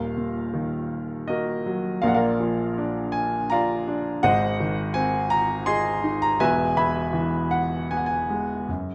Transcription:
Already playing: D#1 D#2 A#4 F5
0.17 A#2
0.54 D#3
1.27 A#3 F#4 A#4 D#5
1.66 F#3
2.02 A#1 A#2 A#4 D5 F5
2.07 F#5
2.14 A#4 D5 F5
2.40 F3
2.78 D4
3.12 G#5
3.50 F4 D5 F5 A#5
3.88 D4
4.23 G#1 G#2 C5 D#5 F#5
4.60 D#3
4.94 C4 G#5
5.30 A#5
5.66 G#4 D#5 G#5 C6
6.04 D#4
6.22 A#5
6.40 E1 E2 B4 E5 G#5
6.76 B2 E5 G#5 B5
7.13 E3
7.51 F#5
7.91 B3 G#5
7.97 F#5
8.06 G#5
8.30 G#3
8.69 F#2

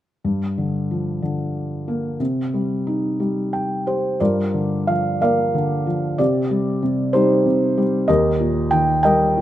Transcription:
0.24 G2
0.58 D3
0.91 F3
1.22 D3
1.88 A#3
2.20 C3
2.54 G3
2.87 D#4
3.20 G3
3.53 G5
3.87 G4 C5
4.20 G2 F4 A#4 D5
4.54 D3
4.87 F3 F5
5.21 A#3 A#4 D5 F5
5.54 D3
5.87 F3
6.18 C3 G4 D5
6.50 G3
6.83 C3
7.13 G3 D#4 G4 C5
7.46 C3
7.78 G3
8.08 D#2 G4 A#4 D#5
8.40 A#2
8.71 D#3 G5
9.03 G3 A#4 D#5 G5
9.37 A#2

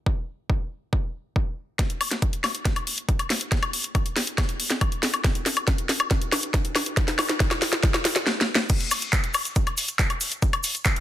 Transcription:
0.06 kick
0.50 kick
0.93 kick
1.36 kick
1.79 kick, snare, closed hi-hat
1.90 closed hi-hat
2.01 open hi-hat, high woodblock
2.11 snare, closed hi-hat
2.22 kick, closed hi-hat
2.33 closed hi-hat
2.44 snare, open hi-hat, high woodblock
2.55 closed hi-hat
2.65 kick, snare, closed hi-hat
2.76 closed hi-hat, high woodblock
2.87 open hi-hat
2.98 closed hi-hat
3.09 kick, closed hi-hat
3.19 closed hi-hat, high woodblock
3.30 snare, open hi-hat
3.41 closed hi-hat
3.52 kick, snare, closed hi-hat
3.63 closed hi-hat, high woodblock
3.73 open hi-hat
3.84 closed hi-hat
3.95 kick, closed hi-hat, high woodblock
4.06 closed hi-hat
4.16 snare, open hi-hat
4.27 closed hi-hat
4.38 kick, snare, closed hi-hat, high woodblock
4.49 closed hi-hat
4.60 open hi-hat
4.70 snare, closed hi-hat
4.81 kick, closed hi-hat, high woodblock
4.92 closed hi-hat
5.03 snare, open hi-hat
5.14 closed hi-hat, high woodblock
5.24 kick, snare, closed hi-hat
5.35 closed hi-hat
5.46 snare, open hi-hat
5.57 closed hi-hat, high woodblock
5.68 kick, snare, closed hi-hat
5.78 closed hi-hat
5.89 snare, open hi-hat
6.00 closed hi-hat, high woodblock
6.11 kick, snare, closed hi-hat
6.22 closed hi-hat
6.32 snare, open hi-hat, high woodblock
6.43 closed hi-hat
6.54 kick, snare, closed hi-hat
6.65 closed hi-hat
6.75 snare, open hi-hat, high woodblock
6.86 closed hi-hat
6.97 kick, snare, closed hi-hat
7.08 snare, closed hi-hat
7.19 snare, open hi-hat, high woodblock
7.29 snare, closed hi-hat
7.40 kick, snare, closed hi-hat
7.51 snare, closed hi-hat, high woodblock
7.62 snare, open hi-hat
7.73 snare, closed hi-hat
7.83 kick, snare, closed hi-hat
7.94 snare, closed hi-hat, high woodblock
8.05 snare, open hi-hat
8.16 snare, closed hi-hat
8.27 snare
8.41 snare
8.55 snare
8.69 kick, closed hi-hat, crash, cabasa
8.81 closed hi-hat
8.91 open hi-hat, cabasa, high woodblock
9.02 closed hi-hat, cabasa
9.13 kick, clap, closed hi-hat, cabasa
9.24 closed hi-hat
9.34 open hi-hat, cabasa, high woodblock
9.45 closed hi-hat, cabasa
9.56 kick, closed hi-hat, cabasa
9.67 closed hi-hat, high woodblock
9.78 open hi-hat, cabasa
9.88 closed hi-hat, cabasa
9.99 kick, clap, closed hi-hat, cabasa
10.10 closed hi-hat, high woodblock
10.21 open hi-hat, cabasa
10.32 closed hi-hat, cabasa
10.42 kick, closed hi-hat, cabasa
10.53 closed hi-hat, high woodblock
10.64 open hi-hat, cabasa
10.75 closed hi-hat, cabasa
10.85 kick, clap, closed hi-hat, cabasa, high woodblock
10.96 closed hi-hat

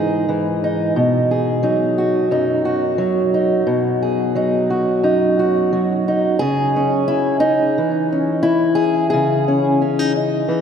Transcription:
Already playing: G#2 E3 D#4 G#4
0.29 E3
0.64 D#4
0.96 B2
1.31 G#4
1.63 F#3 D#4
1.98 F#4
2.31 F#2 D#4
2.65 F#4
2.98 F#3
3.34 D#4
3.67 B2
4.03 G#4
4.35 F#3 D#4
4.70 F#4
5.03 F#2 D#4
5.39 F#4
5.73 F#3
6.08 D#4
6.39 C#3 G#4
6.76 C#4
7.08 E4
7.40 D#4
7.78 E3
8.12 C#4
8.43 E4
8.75 G#4
9.10 C#3 G#4
9.48 C#4
9.82 C#4
9.99 D#4
10.16 D#4
10.48 E3

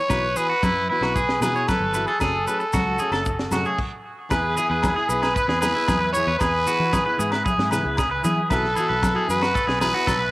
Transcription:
Already playing: C#5
0.09 B1 E3 B3 E4 F#4 B4, kick, snare, muted conga, low agogo, maracas
0.36 E3 B3 E4 F#4 G#4 B4, maracas
0.49 F#4
0.63 F#2 E4, kick, snare, high conga, low agogo, maracas
0.90 E3 B3 E4 F#4 B4, muted conga
1.01 B1 E4 F#4, snare, low agogo
1.05 B3
1.16 G#4, kick, muted conga, maracas
1.29 snare
1.41 B2 E3 B3 E4 F#4 G#4 B4, snare, muted conga, high conga, low agogo, maracas
1.53 B3 E4 F#4 C#5, maracas
1.68 A4 B4, kick, snare, high conga, low agogo, maracas
1.80 G1
1.93 E3 B3 E4 F#4 B4, snare, maracas
2.06 G#4 A4, maracas
2.19 F#1 F#3 A3 C#4 G#4 A4, kick, snare, low agogo, maracas
2.46 F#3 A3 C#4 G#4 B4, maracas
2.60 muted clean electric guitar stroke, maracas
2.73 C#2 F#4, kick, snare, high conga, low conga, low agogo, maracas
2.99 F#3 A3 C#4 G#4, maracas
3.11 F#1 C#4 A4, snare, low agogo, maracas
3.17 A3
3.25 muted clean electric guitar stroke, kick, muted conga, maracas
3.39 snare
3.51 F#2 F#3 A3 C#4 F#4 G#4, snare, muted conga, high conga, low conga, low agogo, maracas
3.64 C#4 G#4, maracas
3.68 A3
3.79 kick, crash
4.29 E2 E3 B3 E4 G#4 B4 E5 G#5 B5, kick, snare, muted conga, low agogo, maracas
4.56 E3 B3 E4 G#4, muted conga, maracas
4.70 E2 B4
4.83 kick, snare, high conga, low agogo, maracas
4.96 B3 E4 G#4
5.09 B1 B3 E4 B4, maracas
5.13 G#4
5.22 G#4, snare, low agogo, maracas
5.35 B4, kick, muted conga, maracas
5.48 E2 G#4, snare
5.61 E3 B3 E4 G#4 B4, snare, high conga, low agogo, maracas
5.65 muted nylon-string guitar stroke
5.75 B3 E4 G#4
5.88 E2 G#4, kick, snare, high conga, low agogo, maracas
6.01 B4
6.13 E3 B3 E4 C#5, muted conga, maracas
6.17 G#4
6.27 E2 B4
6.39 E2 G#4 B4, kick, snare, muted conga, low agogo, maracas
6.66 E3 B3 E4 F#4 G#4, muted conga, maracas
6.80 E3
6.93 G#4, kick, snare, high conga, low agogo, maracas
7.05 B3 E4 G#4 B4
7.17 G#2 E3 B3 E4 G#4, maracas
7.32 B4, snare, low agogo, maracas
7.45 G#4, kick, muted conga, high conga, maracas
7.58 G#2, snare
7.70 E3 B3 E4 G#4 B4, snare, low conga, low agogo, maracas
7.84 C#2 B3 E4 G#4
7.97 G#4, kick, snare, low conga, low agogo, maracas
8.11 B4
8.23 E3 B3 E4 G#4, snare, muted conga, high conga, maracas
8.49 B1 E3 B3 E4 F#4 A4 B4 E5 F#5, kick, snare, low agogo, maracas
8.64 snare
8.76 E3 B3 E4 F#4 G#4, muted conga, maracas
8.89 B1 B4
9.02 kick, snare, high conga, low agogo, maracas
9.14 B3 E4 F#4 G#4
9.27 F#2 E3 B3 E4 F#4 B4, maracas
9.41 F#4, snare, low agogo, maracas
9.55 A4, kick, muted conga, maracas
9.67 B1 G#4, snare
9.80 E3 B3 E4 F#4 G#4 B4, snare, high conga, low agogo, maracas
9.94 B3 E4 F#4
10.07 B1 A4, kick, snare, high conga, low agogo, maracas
10.20 B4

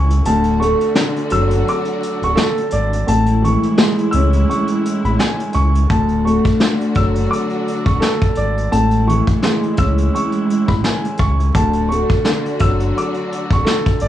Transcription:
Already playing: C#2 A2 E3 G#3 C#4 E4 G#5 C#6
0.10 closed hi-hat
0.24 D1 D2 D3 D4 F#4 A5, closed hi-hat
0.44 closed hi-hat
0.60 A3 C#6, closed hi-hat
0.81 closed hi-hat
0.95 D3, snare
1.16 closed hi-hat
1.30 F#1 F#3 E6, closed hi-hat
1.51 closed hi-hat
1.68 D6, closed hi-hat
1.85 closed hi-hat
2.03 closed hi-hat
2.22 D1 C#6, closed hi-hat
2.36 A4, snare
2.57 closed hi-hat
2.70 G#1 D5, closed hi-hat
2.93 closed hi-hat
3.06 A1 A2 G#3 E4 A5, closed hi-hat
3.26 closed hi-hat
3.42 E3 C#6, closed hi-hat
3.63 closed hi-hat
3.78 G#3, snare
3.98 closed hi-hat
4.11 C#2 C#4 E6, closed hi-hat
4.33 closed hi-hat
4.50 C#6, closed hi-hat
4.67 closed hi-hat
4.85 closed hi-hat
5.04 A1 B5, closed hi-hat
5.19 G#5, snare
5.40 closed hi-hat
5.53 C#2 C#6, closed hi-hat
5.75 closed hi-hat
5.89 D1 D2 D3 D4 F#4 A5, kick, closed hi-hat
6.08 closed hi-hat
6.25 A3 C#6, closed hi-hat
6.45 kick, closed hi-hat
6.60 D3, snare
6.81 closed hi-hat
6.94 F#1 F#3 E6, kick, closed hi-hat
7.15 closed hi-hat
7.31 D6, closed hi-hat
7.50 closed hi-hat
7.68 closed hi-hat
7.86 D1 C#6, kick, closed hi-hat
8.00 A4, snare
8.22 kick, closed hi-hat
8.35 G#1 D5, closed hi-hat
8.57 closed hi-hat
8.71 A1 A2 G#3 E4 A5, closed hi-hat
8.91 closed hi-hat
9.07 E3 C#6, closed hi-hat
9.27 kick, closed hi-hat
9.42 G#3, snare
9.63 closed hi-hat
9.77 C#2 C#4 E6, kick, closed hi-hat
9.98 closed hi-hat
10.15 C#6, closed hi-hat
10.32 closed hi-hat
10.50 closed hi-hat
10.68 A1 B5, kick, closed hi-hat
10.84 G#5, snare
11.04 closed hi-hat
11.17 C#2 C#6, kick, closed hi-hat
11.40 closed hi-hat
11.54 D1 D2 D3 D4 F#4 A5, kick, closed hi-hat
11.73 closed hi-hat
11.89 A3 C#6, closed hi-hat
12.10 kick, closed hi-hat
12.25 D3, snare
12.45 closed hi-hat
12.59 F#1 F#3 E6, kick, closed hi-hat
12.80 closed hi-hat
12.97 D6, closed hi-hat
13.14 closed hi-hat
13.32 closed hi-hat
13.51 D1 C#6, kick, closed hi-hat
13.65 A4, snare
13.86 kick, closed hi-hat
14.00 G#1 D5, closed hi-hat

